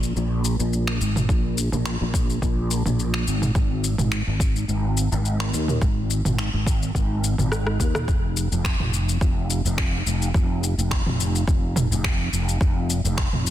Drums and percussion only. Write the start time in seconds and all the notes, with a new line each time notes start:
0.03 shaker
0.16 shaker
0.45 shaker
0.60 shaker
0.73 shaker
0.87 finger snap
1.01 shaker
1.16 mid tom, shaker
1.29 kick, shaker
1.58 shaker
1.72 mid tom, shaker
1.86 finger snap, shaker
2.14 kick, shaker
2.30 shaker
2.42 kick, shaker
2.71 shaker
2.86 mid tom, shaker
2.99 shaker
3.14 finger snap
3.27 shaker
3.42 mid tom, shaker
3.55 kick, shaker
3.84 shaker
3.98 mid tom, shaker
4.12 finger snap, shaker
4.40 kick, shaker
4.56 shaker
4.69 shaker
4.97 shaker
5.12 shaker
5.25 shaker
5.40 finger snap
5.54 shaker
5.68 mid tom, shaker
5.82 kick, shaker
6.10 shaker
6.25 mid tom, shaker
6.38 finger snap, shaker
6.67 kick, shaker
6.83 shaker
6.95 kick, shaker
7.24 shaker
7.38 mid tom, shaker
7.52 cross-stick, shaker
7.67 cross-stick
7.80 kick, shaker
7.95 cross-stick, mid tom, shaker
8.08 kick, shaker
8.37 shaker
8.52 shaker
8.65 finger snap, kick, shaker
8.80 mid tom
8.94 shaker
9.09 shaker
9.21 kick, shaker
9.50 shaker
9.66 shaker
9.78 finger snap, kick, shaker
10.07 shaker
10.22 shaker
10.34 kick, shaker
10.64 shaker
10.79 shaker
10.91 finger snap, kick, shaker
11.06 mid tom
11.20 shaker
11.35 shaker
11.48 kick, shaker
11.76 mid tom, shaker
11.92 shaker
12.04 finger snap, kick
12.33 shaker
12.49 shaker
12.61 kick, shaker
12.90 shaker
13.05 shaker
13.17 finger snap, kick
13.33 mid tom
13.47 shaker